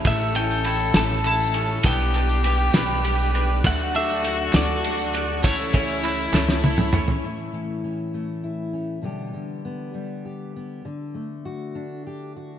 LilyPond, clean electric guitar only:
\new Staff \with { instrumentName = "Clean electric guitar" } { \time 6/8 \key a \mixolydian \tempo 4. = 67 e''8 g''4 a''8 a''4 | g''2 r4 | fis''8 e''4 d''4. | cis''2 r4 |
r2. | r2. | r2. | }